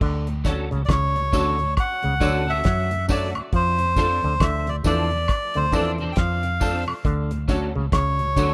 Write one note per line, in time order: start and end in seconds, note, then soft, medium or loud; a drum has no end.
0.01 0.68 D2 loud
0.01 0.28 D3 medium
0.01 kick loud
0.01 crash loud
0.27 0.35 D2 medium
0.27 0.35 A2 medium
0.27 closed hi-hat medium
0.44 0.55 F#3 medium
0.44 0.67 A3 medium
0.44 0.56 C#4 medium
0.44 0.67 C#4 medium
0.44 0.62 D4 medium
0.44 0.56 D4 medium
0.44 0.62 F#4 medium
0.44 0.68 F#4 medium
0.44 0.68 A4 medium
0.44 0.62 C#5 loud
0.44 kick loud
0.44 snare medium
0.44 closed hi-hat medium
0.44 tambourine soft
0.71 0.89 C#2 medium
0.71 0.79 D2 medium
0.71 0.78 A2 medium
0.71 0.82 C#3 medium
0.71 closed hi-hat soft
0.85 1.31 C#2 loud
0.85 0.90 D5 medium
0.85 kick loud
0.85 closed hi-hat loud
0.85 high woodblock medium
0.89 1.16 C#3 medium
0.89 1.74 C#5 loud
0.89 snare loud
1.15 1.23 D2 medium
1.15 1.23 A2 medium
1.15 1.23 F#4 soft
1.15 1.23 C#5 soft
1.15 closed hi-hat soft
1.32 1.75 D2 loud
1.32 1.60 D3 medium
1.32 1.44 F#3 medium
1.32 1.55 A3 medium
1.32 1.44 C#4 medium
1.32 1.55 C#4 medium
1.32 1.50 D4 medium
1.32 1.44 D4 medium
1.32 1.50 F#4 medium
1.32 1.56 F#4 loud
1.32 1.56 A4 loud
1.32 1.50 C#5 loud
1.32 kick medium
1.32 closed hi-hat medium
1.32 tambourine medium
1.59 1.66 D2 medium
1.59 1.66 A2 medium
1.59 closed hi-hat soft
1.77 2.51 F#5 loud
1.77 kick loud
1.77 closed hi-hat medium
1.77 high woodblock medium
2.02 2.21 C#2 loud
2.02 2.10 D2 medium
2.02 2.10 A2 medium
2.02 2.14 C#3 medium
2.02 closed hi-hat soft
2.20 2.63 D2 loud
2.20 2.48 D3 medium
2.20 2.31 F#3 medium
2.20 2.43 A3 loud
2.20 2.31 C#4 medium
2.20 2.43 C#4 medium
2.20 2.37 D4 loud
2.20 2.32 D4 medium
2.20 2.38 F#4 loud
2.20 2.43 F#4 loud
2.20 2.44 A4 loud
2.20 2.38 C#5 loud
2.20 kick medium
2.20 closed hi-hat medium
2.20 tambourine medium
2.47 2.54 D2 medium
2.47 2.54 A2 medium
2.47 2.60 A3 medium
2.47 2.59 C#4 medium
2.47 2.59 F#4 medium
2.47 2.59 A4 medium
2.47 3.06 E5 loud
2.64 3.32 F#2 medium
2.64 2.91 F#3 medium
2.64 kick loud
2.64 snare loud
2.64 closed hi-hat medium
2.90 2.98 D2 medium
2.90 2.98 A2 medium
2.90 closed hi-hat medium
3.08 3.19 F#3 medium
3.08 3.31 A3 medium
3.08 3.19 C#4 medium
3.08 3.31 C#4 medium
3.08 3.19 D4 medium
3.08 3.25 D4 loud
3.08 3.26 F#4 medium
3.08 3.32 F#4 medium
3.08 3.32 A4 medium
3.08 3.26 C#5 loud
3.08 3.30 D5 medium
3.08 kick loud
3.08 open hi-hat medium
3.08 tambourine medium
3.34 3.42 D2 medium
3.34 3.42 A2 medium
3.34 3.43 F#4 soft
3.34 3.43 C#5 soft
3.34 closed hi-hat soft
3.34 high woodblock medium
3.53 4.20 F2 loud
3.53 3.80 F3 medium
3.53 4.45 C5 loud
3.53 kick loud
3.53 closed hi-hat medium
3.78 3.86 F2 medium
3.78 3.86 C3 medium
3.78 closed hi-hat medium
3.96 4.07 F3 medium
3.96 4.19 F3 medium
3.96 4.07 A3 medium
3.96 4.20 C4 medium
3.96 4.07 D4 medium
3.96 4.14 D4 medium
3.96 4.20 D4 loud
3.96 4.14 F4 medium
3.96 4.14 A4 loud
3.96 4.20 A4 loud
3.96 kick loud
3.96 snare medium
3.96 closed hi-hat medium
3.96 tambourine medium
4.22 4.40 D2 loud
4.22 4.30 F2 medium
4.22 4.30 C3 medium
4.22 4.34 D3 medium
4.22 closed hi-hat soft
4.40 4.83 D2 loud
4.40 4.68 D3 medium
4.40 4.69 E5 medium
4.40 kick loud
4.40 snare loud
4.40 closed hi-hat loud
4.40 high woodblock medium
4.66 4.74 F2 medium
4.66 4.74 C3 medium
4.66 4.75 F4 soft
4.66 4.74 A4 soft
4.66 4.76 D5 medium
4.66 closed hi-hat soft
4.83 5.27 E2 loud
4.83 5.12 E3 medium
4.83 4.95 F3 medium
4.83 5.07 F3 medium
4.83 4.95 A3 medium
4.83 5.08 C4 medium
4.83 4.95 D4 medium
4.83 5.01 D4 medium
4.83 5.08 D4 medium
4.83 5.02 F4 medium
4.83 5.02 A4 loud
4.83 5.08 A4 medium
4.83 5.58 D5 loud
4.83 kick loud
4.83 closed hi-hat medium
4.83 tambourine medium
5.09 5.18 F2 medium
5.09 5.18 C3 medium
5.09 closed hi-hat soft
5.28 kick loud
5.28 closed hi-hat medium
5.28 high woodblock medium
5.54 5.73 D2 medium
5.54 5.62 F2 medium
5.54 5.62 C3 medium
5.54 5.66 D3 medium
5.54 5.74 C5 medium
5.54 closed hi-hat soft
5.72 6.15 E2 medium
5.72 5.99 E3 medium
5.72 5.83 F3 medium
5.72 5.96 F3 medium
5.72 5.83 A3 medium
5.72 5.96 C4 medium
5.72 5.89 D4 loud
5.72 5.84 D4 medium
5.72 5.96 D4 loud
5.72 5.90 F4 medium
5.72 5.90 A4 loud
5.72 5.96 A4 medium
5.72 5.92 D5 medium
5.72 kick medium
5.72 closed hi-hat medium
5.72 tambourine medium
5.98 6.06 F2 medium
5.98 6.06 C3 medium
5.98 6.12 F3 medium
5.98 6.12 C4 medium
5.98 6.11 D4 medium
5.98 6.11 A4 medium
5.98 closed hi-hat soft
6.12 6.17 G5 medium
6.12 closed hi-hat medium
6.17 6.84 F2 medium
6.17 6.44 F3 medium
6.17 6.84 F5 medium
6.17 kick loud
6.17 snare loud
6.43 6.50 F2 medium
6.43 6.50 C3 medium
6.43 closed hi-hat medium
6.60 6.83 F3 medium
6.60 6.72 F3 medium
6.60 6.72 A3 medium
6.60 6.83 C4 medium
6.60 6.77 D4 loud
6.60 6.83 D4 medium
6.60 6.72 D4 medium
6.60 6.78 F4 medium
6.60 6.78 A4 loud
6.60 6.84 A4 medium
6.60 kick loud
6.60 open hi-hat medium
6.60 tambourine medium
6.87 6.94 F2 medium
6.87 6.94 C3 medium
6.87 6.94 F4 soft
6.87 6.94 A4 soft
6.87 high woodblock medium
7.05 7.72 D2 loud
7.05 7.31 D3 loud
7.05 kick loud
7.05 closed hi-hat medium
7.31 7.39 D2 medium
7.31 7.38 A2 medium
7.31 closed hi-hat medium
7.48 7.59 F#3 medium
7.48 7.71 A3 medium
7.48 7.59 C#4 medium
7.48 7.71 C#4 medium
7.48 7.65 D4 medium
7.48 7.59 D4 medium
7.48 7.65 F#4 medium
7.48 7.71 F#4 medium
7.48 7.71 A4 medium
7.48 7.66 C#5 loud
7.48 kick loud
7.48 closed hi-hat medium
7.48 tambourine soft
7.74 7.92 C#2 medium
7.74 7.82 D2 medium
7.74 7.82 A2 medium
7.74 7.86 C#3 medium
7.92 8.35 C#2 loud
7.92 8.20 C#3 medium
7.92 8.54 C#5 loud
7.92 kick loud
7.92 snare loud
7.92 closed hi-hat loud
7.92 high woodblock medium
8.19 8.27 D2 medium
8.19 8.27 A2 medium
8.19 8.26 F#4 soft
8.19 8.26 C#5 soft
8.19 closed hi-hat soft
8.36 8.54 D2 loud
8.36 8.54 D3 medium
8.36 8.47 F#3 medium
8.36 8.54 A3 loud
8.36 8.47 C#4 medium
8.36 8.54 C#4 loud
8.36 8.53 D4 medium
8.36 8.48 D4 medium
8.36 8.53 F#4 medium
8.36 8.54 F#4 loud
8.36 8.54 A4 medium
8.36 8.54 C#5 loud
8.36 kick medium
8.36 closed hi-hat medium
8.36 tambourine medium